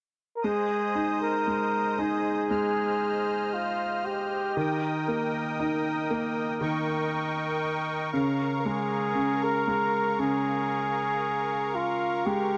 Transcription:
0.36 A#4
0.42 G#3 G#4 C5 D#5 D#6
0.95 D#4
1.22 A#4
1.47 G#3
1.99 D#4 G#4
2.50 G#3 F6
3.54 F4
4.05 G4
4.57 D#3 A#4 G5 D#6
5.08 A#3
5.59 D#4
6.10 A#3
6.61 D#3 C#6
8.13 C#3 F5 A#5
8.59 A#4
8.66 G#3 G#4
9.15 C#3
9.43 A#4
9.68 G#3
10.19 C#3 G#4
11.75 F4
12.26 G#3 G4

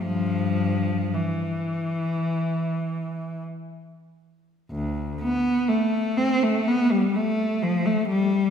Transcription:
0.02 G2 F3
1.14 E3
4.71 D2
5.22 B3
5.68 A3
6.17 C4
6.43 A3
6.68 B3
6.92 G3
7.16 A3
7.62 F3
7.86 A3
8.08 G3

